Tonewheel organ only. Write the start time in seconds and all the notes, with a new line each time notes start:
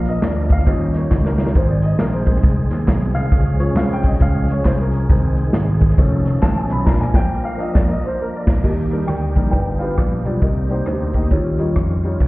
Already playing: F3 A#3 D4 A#4
0.66 D#3 A#3 C#4 G4
1.55 D#3 G#3 C4 G#4
3.31 F3 G#3 C#4 G#4
5.10 D#3 C4 G#4
5.98 F3 C#4 D#4 A4
6.87 A#3 D4 A#4
8.64 D#3 A#3 D#4 G4
9.53 F3 B3
10.42 A#3 C4 D#4
11.32 D#3 G3 C#4 F4
12.21 G#3 C4 G5